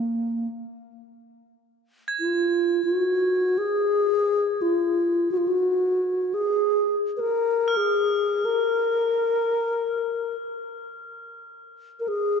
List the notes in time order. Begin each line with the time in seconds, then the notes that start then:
Already playing: A#3
2.08 G#6
2.20 F4
2.84 F#4
3.58 G#4
4.62 F4
5.31 F#4
5.37 F4
5.48 F#4
6.34 G#4
7.17 A#4 B4
7.68 F6
7.77 G#4
8.45 A#4
12.00 A#4
12.08 G#4